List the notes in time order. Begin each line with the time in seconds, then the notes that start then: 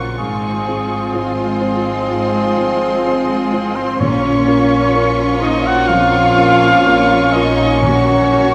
Already playing: A#1 F2 C#3 F3 F#3 A#3 C#4 F4 F#4 A#4 C#6
0.17 G#1 G#2 F3 G#3 C4 F4 G#4
0.68 C4 F4 G#4
1.12 G#3 C4 F4 G#4 C5 C6
1.60 C4 F4 C5
2.09 G#2
2.57 C4 F4 C5
3.06 C4 F4 C5
3.53 C4 F4 C5
3.74 C4 C5
3.98 A#1 A#2 F3 A#3 C#4 F4 C#5 C#6
4.47 C#4 F4 A#4
4.95 C#4 F4 A#4
5.41 C#4 D#4 F4 A#4 D#5
5.65 F#4 F#5
5.88 F2 F4 F5
6.37 C#4 F4 A#4
6.86 C#4 F4 A#4
7.33 C#4 D#4 F4 A#4 D#5
7.81 A#2 F#3 C#4 F#4 C#5
8.33 C#4 F#4 A#4